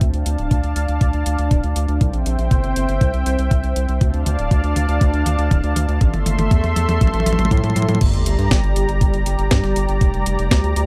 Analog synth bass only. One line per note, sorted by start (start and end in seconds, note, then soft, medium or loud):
0.01 0.12 D2 loud
0.13 0.24 D2 medium
0.26 0.36 D2 medium
0.38 0.49 D1 medium
0.51 0.62 D2 loud
0.63 0.74 D2 medium
0.76 0.86 D2 medium
0.88 0.99 D2 medium
1.01 1.12 D2 loud
1.13 1.24 D2 medium
1.26 1.37 D2 medium
1.39 1.49 D2 medium
1.51 1.62 D1 loud
1.64 1.74 D2 medium
1.76 1.87 D2 medium
1.88 1.99 D2 medium
2.01 2.12 C2 loud
2.13 2.24 A#1 medium
2.26 2.37 A#1 medium
2.38 2.49 A#1 medium
2.51 2.62 G1 loud
2.63 2.74 G1 medium
2.76 2.87 G1 medium
2.89 2.99 G1 medium
3.01 3.12 C2 loud
3.14 3.24 C2 medium
3.26 3.37 C2 loud
3.39 3.49 C2 medium
3.51 3.62 C2 loud
3.63 3.74 C2 medium
3.76 3.87 C2 medium
3.89 3.99 C2 medium
4.01 4.12 D2 loud
4.14 4.24 D2 medium
4.26 4.37 D2 medium
4.39 4.49 D1 medium
4.51 4.62 D2 loud
4.64 4.74 D2 medium
4.76 4.87 D2 medium
4.88 4.99 D2 medium
5.01 5.12 D2 loud
5.13 5.24 D2 medium
5.26 5.37 D2 medium
5.38 5.49 D2 medium
5.51 5.62 D1 loud
5.63 5.74 D2 medium
5.76 5.86 D2 medium
5.88 5.99 D2 medium
6.01 6.12 A1 loud
6.14 6.24 G1 medium
6.26 6.37 G1 medium
6.39 6.49 G1 medium
6.51 6.62 E2 loud
6.64 6.74 E2 medium
6.76 6.87 E2 medium
6.89 6.99 E2 medium
7.01 7.12 A1 loud
7.14 7.24 A1 medium
7.26 7.37 A1 medium
7.39 7.49 A1 medium
7.51 7.62 A2 loud
7.64 7.74 A2 medium
7.76 7.87 A2 loud
7.89 7.99 A2 medium
8.01 8.12 G1 loud
8.14 8.24 G1 medium
8.26 8.37 G1 medium
8.38 8.49 G2 medium
8.51 8.62 G1 loud
8.64 8.74 G1 medium
8.76 8.87 G1 loud
8.89 8.99 G1 medium
9.01 9.12 G1 loud
9.14 9.24 G1 medium
9.26 9.37 G1 medium
9.38 9.49 G1 medium
9.51 9.62 G2 loud
9.63 9.74 G1 medium
9.76 9.87 G1 medium
9.88 9.99 G1 medium
10.01 10.12 F1 loud
10.14 10.24 F1 medium
10.26 10.37 F1 medium
10.39 10.49 F1 medium
10.51 10.62 D2 loud
10.64 10.74 D2 medium
10.76 10.86 D2 medium